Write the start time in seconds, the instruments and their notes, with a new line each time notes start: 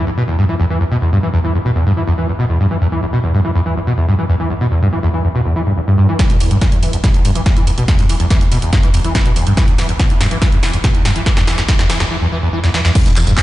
0.07 acid bass E2
0.17 acid bass B2
0.28 acid bass E2
0.38 acid bass G2
0.49 acid bass E3
0.60 acid bass E2
0.70 acid bass E3
0.81 acid bass E2
0.91 acid bass B2
1.02 acid bass E2
1.12 acid bass G2
1.23 acid bass E3
1.33 acid bass E2
1.44 acid bass E3
1.54 acid bass E2
1.65 acid bass B2
1.76 acid bass E2
1.86 acid bass G2
1.97 acid bass E3
2.07 acid bass E2
2.18 acid bass E3
2.29 acid bass E2
2.39 acid bass B2
2.50 acid bass E2
2.60 acid bass G2
2.71 acid bass E3
2.81 acid bass E2
2.92 acid bass E3
3.02 acid bass E2
3.13 acid bass B2
3.24 acid bass E2
3.34 acid bass G2
3.45 acid bass E3
3.55 acid bass E2
3.66 acid bass E3
3.76 acid bass E2
3.87 acid bass B2
3.98 acid bass E2
4.08 acid bass G2
4.19 acid bass E3
4.29 acid bass E2
4.40 acid bass E3
4.50 acid bass E2
4.61 acid bass B2
4.71 acid bass E2
4.82 acid bass G2
4.93 acid bass E3
5.03 acid bass E2
5.14 acid bass E3
5.24 acid bass E2
5.35 acid bass B2
5.45 acid bass E2
5.56 acid bass E3
5.67 acid bass G2
5.77 acid bass E2
5.88 acid bass G2
5.98 acid bass G2
6.09 acid bass E3
6.19 acid bass E2, kick, snare, closed hi-hat
6.30 acid bass B2, closed hi-hat
6.40 acid bass E2, open hi-hat
6.51 acid bass G2, closed hi-hat
6.61 acid bass E3, kick, snare, closed hi-hat
6.72 acid bass E2, closed hi-hat
6.83 acid bass E3, open hi-hat
6.93 acid bass E2, closed hi-hat
7.04 acid bass B2, kick, snare, closed hi-hat
7.14 acid bass E2, closed hi-hat
7.25 acid bass G2, open hi-hat
7.35 acid bass E3, closed hi-hat
7.46 acid bass E2, kick, snare, closed hi-hat
7.57 acid bass E3, closed hi-hat
7.67 acid bass E2, open hi-hat
7.78 acid bass B2, closed hi-hat
7.88 acid bass E2, kick, snare, closed hi-hat
7.99 acid bass G2, open hi-hat
8.09 acid bass E3, open hi-hat
8.20 acid bass E2, closed hi-hat
8.30 acid bass E3, kick, snare, closed hi-hat
8.41 acid bass E2, closed hi-hat
8.52 acid bass B2, open hi-hat
8.62 acid bass E2, closed hi-hat
8.73 acid bass G2, kick, snare, closed hi-hat
8.83 acid bass E3, closed hi-hat
8.94 acid bass E2, open hi-hat
9.04 acid bass E3, closed hi-hat
9.15 acid bass E2, kick, snare, closed hi-hat
9.26 acid bass B2, closed hi-hat
9.36 acid bass E2, open hi-hat
9.47 acid bass G2, closed hi-hat
9.57 acid bass E3, kick, snare, closed hi-hat
9.68 acid bass E2, closed hi-hat
9.78 acid bass E3, snare, open hi-hat
9.89 acid bass E2, closed hi-hat
9.99 acid bass B2, kick, snare, closed hi-hat
10.10 acid bass E2, closed hi-hat
10.21 acid bass G2, snare, open hi-hat
10.31 acid bass E3, closed hi-hat
10.42 acid bass E3, kick, snare, closed hi-hat
10.52 acid bass E2, closed hi-hat
10.63 acid bass E3, snare, open hi-hat
10.73 acid bass E2, closed hi-hat
10.84 acid bass B2, kick, snare, closed hi-hat
10.95 acid bass E2, closed hi-hat
11.05 acid bass G2, snare, open hi-hat
11.16 acid bass E3, closed hi-hat
11.26 acid bass E3, kick, snare, closed hi-hat
11.37 acid bass E2, snare, open hi-hat
11.47 acid bass E3, snare, open hi-hat
11.58 acid bass E2, snare, closed hi-hat
11.68 acid bass E3, kick, snare, closed hi-hat
11.79 acid bass E2, snare, closed hi-hat
11.90 acid bass E3, snare, open hi-hat
12.00 acid bass E2, snare, closed hi-hat
12.11 acid bass E3
12.21 acid bass E2
12.32 acid bass E3
12.42 acid bass E2
12.53 acid bass E3
12.64 acid bass E2, snare
12.74 acid bass E3, snare
12.85 acid bass E2, snare
12.95 kick, closed hi-hat, crash, ride, tambourine
13.06 detuned saw bass E1, acid bass B2, closed hi-hat, tambourine
13.16 detuned saw bass E1, acid bass E2, clap, open hi-hat, tambourine
13.27 detuned saw bass E1, acid bass G2, closed hi-hat, tambourine
13.38 acid bass E3, kick, clap, closed hi-hat, tambourine